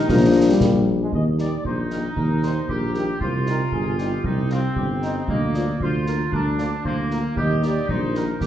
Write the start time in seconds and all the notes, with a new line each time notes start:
Already playing: D#4 G4 A#4
0.09 A#1 F3 A#3 D4, concert bass drum, snare
0.48 G3
0.60 A#1, concert bass drum, snare
1.01 G#3
1.12 D#2 D#5, concert bass drum
1.38 G3 A#3 D#4 D5, snare
1.64 A#1 D#4 C5, concert bass drum
1.90 G3 A#3 D#4 A#4, snare
2.16 D#2 A#4, concert bass drum
2.42 G3 A#3 D#4 C5, snare
2.68 A#1 G4 A#4, concert bass drum
2.94 G3 A#3 D#4 G4, snare
3.20 C2 F4 C5, concert bass drum
3.46 G3 C4 D#4 A#4, snare
3.72 G1 G#4, concert bass drum
3.98 G3 C4 D#4 G4, snare
4.24 C2 D#4, concert bass drum
4.50 G3 C4 D#4 F4, snare
4.76 G1 G4, concert bass drum
5.01 G3 C4 D#4, snare
5.28 D2 A#3 D#5, concert bass drum
5.53 F3 A#3 F4 D5, snare
5.80 D2 F4 C5, concert bass drum
6.05 F3 A#3 F4 A#4, snare
6.32 D2 D4 A#4, concert bass drum
6.58 F3 A#3 F4 D5, snare
6.84 D2 A#3 C5, concert bass drum
7.10 F3 A#3 F4 A#4, snare
7.36 D#2 G4 D#5, concert bass drum
7.61 G3 A#3 D#4 D5, snare
7.88 A#1 D#4 C5, concert bass drum
8.13 G3 A#3 D#4 A#4, snare
8.40 D#2 G4, concert bass drum, snare